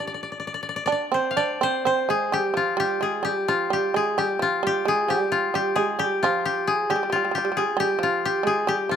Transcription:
Already playing: shamisen D4, koto F4 G4
0.07 koto D5
0.14 koto D5
0.23 koto D5
0.32 koto D5
0.40 koto D5
0.47 koto D5
0.54 koto D5
0.63 koto D5
0.69 koto D5
0.76 koto D5
0.86 shamisen D4, koto D5
0.92 koto D5
1.12 shamisen C4, koto C5
1.31 koto F5
1.37 shamisen D4, koto D5
1.61 shamisen C4, koto C5
1.85 shamisen C4, koto C5
2.09 shamisen G#3, koto G#4
2.32 shamisen G3, koto G4
2.54 shamisen F3, koto F4
2.77 shamisen G3, koto G4
3.01 shamisen G#3, koto G#4
3.23 shamisen G3, koto G4
3.48 shamisen F3, koto F4
3.70 shamisen G3, koto G4
3.94 shamisen G#3, koto G#4
4.18 shamisen G3, koto G4
4.39 shamisen F3, koto F4
4.63 shamisen G3, koto G4
4.85 shamisen G#3, koto G#4
5.08 shamisen G3, koto G4
5.32 koto F4
5.54 shamisen G3, koto G4
5.76 shamisen G#3, koto G#4
5.99 shamisen G3, koto G4
6.23 shamisen F3, koto F4
6.45 koto G4
6.67 koto G#4
6.90 shamisen G3, koto G4
6.96 shamisen G3
7.03 shamisen G3
7.10 shamisen G3, koto F4
7.16 shamisen G3
7.25 shamisen G3
7.31 shamisen G3, koto G4
7.38 shamisen G3
7.45 shamisen G3
7.52 shamisen G3
7.57 shamisen G3, koto G#4
7.77 shamisen G3, koto G4
7.99 shamisen F3
8.03 koto F4
8.25 koto G4
8.43 shamisen G#3, koto G#4
8.67 shamisen G3, koto G4
8.89 shamisen F3, koto F4

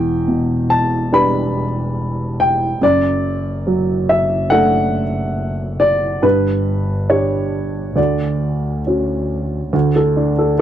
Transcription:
Already playing: double bass E1, grand piano E2 G5
0.28 grand piano B2
0.70 grand piano A5
1.12 grand piano G3 D4 B4 B5
2.40 grand piano G5
2.80 double bass F#1, grand piano F#2 D5
3.67 grand piano F#3
4.09 grand piano E5
4.50 grand piano A3 D4 A4 F#5
5.80 grand piano D5
6.22 double bass G1, grand piano G2 B4
7.09 grand piano D4 G4 C#5
7.96 grand piano D2 D5, double bass D2
8.87 grand piano C#4 F#4
9.73 grand piano D2, double bass D2
9.96 grand piano A4
10.16 grand piano D4
10.38 grand piano A4

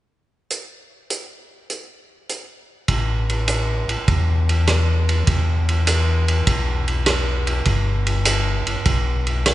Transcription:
0.50 closed hi-hat
1.10 closed hi-hat
1.70 closed hi-hat
2.29 closed hi-hat
2.88 tonewheel organ A1, kick, ride
3.29 ride
3.48 hi-hat pedal, ride
3.88 tonewheel organ A1, ride
4.08 tonewheel organ E2, kick, ride
4.49 ride
4.67 cross-stick, hi-hat pedal, ride
5.09 ride
5.27 tonewheel organ E2, kick, ride
5.69 ride
5.87 hi-hat pedal, ride
6.28 ride
6.47 tonewheel organ B1, kick, ride
6.88 ride
7.06 cross-stick, hi-hat pedal, ride
7.47 ride
7.65 tonewheel organ G1, kick, ride
8.07 ride
8.25 hi-hat pedal, ride
8.67 tonewheel organ G1, ride
8.85 tonewheel organ B1, kick, ride
9.27 ride
9.46 cross-stick, hi-hat pedal, ride

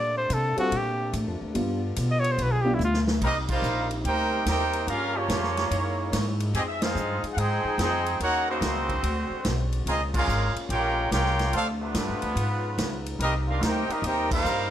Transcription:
Already playing: upright bass A#2, trombone section C3 A3 A#3 D4, trumpet D5
0.18 trumpet C5
0.30 upright bass C3, trumpet A4, hi-hat pedal, ride
0.56 grand piano G3 C4 F4 A4, trumpet F#4, muted upright bass stroke, ride
0.72 upright bass A#2, ride
0.77 trumpet G4
1.13 upright bass A2, hi-hat pedal, ride
1.27 upright bass F2
1.41 upright bass D2
1.54 upright bass G2, trombone section D3 G3 B3 F4, grand piano G3 B3 D4 F4, ride
1.96 upright bass B2, hi-hat pedal, ride
2.11 trumpet D#5
2.20 trumpet C#5
2.24 ride
2.32 trumpet C5
2.38 upright bass B1, ride
2.43 trumpet B4
2.52 trumpet G#4
2.61 grand piano G3 B3, trumpet G4
2.65 grand piano D4 F4
2.74 trumpet E4
2.79 upright bass D2, hi-hat pedal
2.85 trumpet F4
2.94 snare
3.07 snare
3.21 upright bass C2, trombone section C3 G3 A#3 D#4, trumpet section C4 G4 A#4 D#5, kick, crash
3.48 trombone section G3 A#3 F4, trumpet section D#4 A#4 C5 F5, kick, crash
3.62 upright bass A#1, hi-hat pedal
3.91 ride
4.04 upright bass D2, trombone section A#3 D#4 G4, trumpet section D#4 A#4 C5 G5, ride
4.46 upright bass D#2, trombone section A#3 D#4 G4, trumpet section D#4 A#4 C5 G5, snare, hi-hat pedal, ride
4.73 ride
4.87 upright bass G2, trombone section C#3 A#3 C#4 F4, trumpet section C#4 G4 A#4 F5, ride
5.15 trombone section F3 A#3 C#4, trumpet section A#3 F4 G4 C#5
5.28 upright bass F2, snare, hi-hat pedal, ride
5.44 snare
5.57 snare, ride
5.69 upright bass F#2, trombone section G#3 D#4 E4, ride
6.12 upright bass G#2, snare, hi-hat pedal, ride
6.40 ride
6.53 upright bass F2, trombone section F3 G#3 C4 D#4 G#4, trumpet section C4 G4 G#4 D#5, ride
6.68 trumpet section E5
6.81 trombone section G#3 C4 F4, trumpet section D#4 G#4 C5 F5, snare, ride
6.95 upright bass G2, hi-hat pedal
7.23 muted upright bass stroke, ride
7.34 upright bass G#2, trumpet section F#5
7.38 trombone section C4 D#4 G#4, trumpet section D#4 G#4 C5 G5, ride
7.64 muted upright bass stroke
7.78 upright bass F2, trombone section C4 D#4 G#4, trumpet section D#4 G#4 C5 G5, snare, hi-hat pedal, ride
8.06 ride
8.19 upright bass D#2, trombone section C#3 D#3 A#3 C#4 F#4, trumpet section D#4 A#4 C#5 F#5, ride
8.49 trombone section C#3 F#3 C4, trumpet section A#3 D#4 F#4 C5
8.61 upright bass C#2, snare, hi-hat pedal, ride
8.89 kick, ride
9.03 upright bass D2, trombone section D3 G#3 C4 F#4, ride
9.30 muted upright bass stroke
9.45 upright bass B1, snare, hi-hat pedal, ride
9.72 ride
9.86 upright bass C#2, trombone section A#3 C#4 D#4 F4, trumpet section C4 F4 G#4 D#5, ride
10.14 trombone section G#3 A#3 F4, trumpet section C#4 G#4 A#4 F5, kick, crash
10.28 upright bass G#1, hi-hat pedal
10.55 muted upright bass stroke, ride
10.69 upright bass A#1, trombone section G#3 A#3 G4, trumpet section F4 A#4 C#5 G5, ride
11.11 upright bass C2, trombone section G#3 A#3 G4, trumpet section F4 A#4 C#5 G5, snare, hi-hat pedal, ride
11.26 snare
11.39 snare, ride
11.53 upright bass D2, trombone section C3 F3 A3 C4 D4 F4, trumpet section D4 A4 C5 F5, ride
11.81 trombone section C3 F3 B3, trumpet section A3 D4 F4 B4
11.94 upright bass G2, snare, hi-hat pedal, ride
12.08 upright bass F2
12.22 upright bass D2, ride
12.35 upright bass G#2, trombone section C#3 B3 D#4, ride
12.78 upright bass C#2, snare, hi-hat pedal, ride
13.06 ride
13.19 upright bass C2, trombone section C3 G3 A#3 D#4, trumpet section C4 G4 A#4 D#5, ride
13.48 trumpet section D4 G4 A#4 F5, trombone section F4
13.61 upright bass D2, trombone section A#3 D#4 G4, trumpet section D#4 A#4 C5 G5, snare, hi-hat pedal, ride
13.88 trombone section G3 A#3 D#4, trumpet section C4 G4 A#4 D#5, muted upright bass stroke, ride
14.02 upright bass D#2, trombone section A#3 D#4 G4, ride
14.06 trumpet section D#4 A#4 C5 G5
14.31 trombone section G3 A#3 F4, trumpet section D#4 A#4 C5 F5, kick, crash
14.44 upright bass G2, hi-hat pedal

